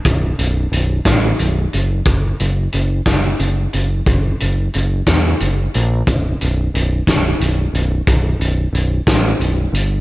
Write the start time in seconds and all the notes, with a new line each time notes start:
0.05 B0, kick, closed hi-hat
0.39 B0, closed hi-hat
0.72 B0, closed hi-hat
1.05 A1, kick, snare, closed hi-hat
1.39 B0, closed hi-hat
1.73 F#1, closed hi-hat
2.06 F#1, kick, closed hi-hat
2.40 F#1, closed hi-hat
2.73 F#1, closed hi-hat
3.06 F#1, kick, snare, closed hi-hat
3.39 F#1, closed hi-hat
3.73 F#1, closed hi-hat
4.06 F#1, kick, closed hi-hat
4.40 F#1, closed hi-hat
4.74 F#1, closed hi-hat
5.07 E2, kick, snare, closed hi-hat
5.40 F#1, closed hi-hat
5.74 A#1, closed hi-hat
6.07 B0, kick, closed hi-hat
6.41 B0, closed hi-hat
6.74 B0, closed hi-hat
7.07 B0, kick, snare, closed hi-hat
7.40 B0, closed hi-hat
7.73 B0, closed hi-hat
8.07 B0, kick, closed hi-hat
8.39 B0, closed hi-hat
8.73 B0, closed hi-hat
9.07 A1, kick, snare, closed hi-hat
9.40 B0, closed hi-hat
9.72 G1, closed hi-hat